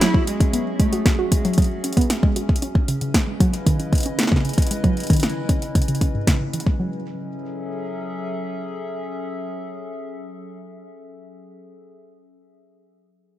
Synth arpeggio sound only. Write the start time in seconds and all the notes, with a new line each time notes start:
0.01 F#3
0.14 F#3
0.41 C#4
0.53 B3
0.80 G#3
0.93 F#4
1.19 F#4
1.45 F#3
1.58 F#3
1.84 C#4
1.97 B3
2.23 G#3
2.36 F#4
2.62 C#4
2.88 C#3
3.01 C#3
3.27 G#3
3.40 F#3
3.66 D#3
3.80 C#4
4.06 C#4
4.32 C#3
4.45 C#3
4.71 G#3
4.84 F#3
5.10 D#3
5.23 C#4
5.49 C#4
5.75 C#3
5.88 C#3
6.01 C#4
6.14 G#2
6.28 C#3
6.40 C#3
6.54 E3
6.67 G#3
6.79 F#3